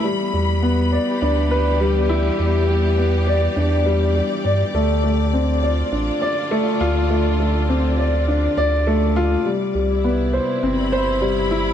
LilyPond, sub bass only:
\new Staff \with { instrumentName = "Sub bass" } { \clef bass \time 4/4 \key d \dorian \tempo 4 = 102 r8 e,4 r8 d,2 | e,2 e,4 r8 g,8 | d,2 a,,8 r4 d,8~ | d,2~ d,8 d,4. |
r8 c,4 r8 g,,2 | }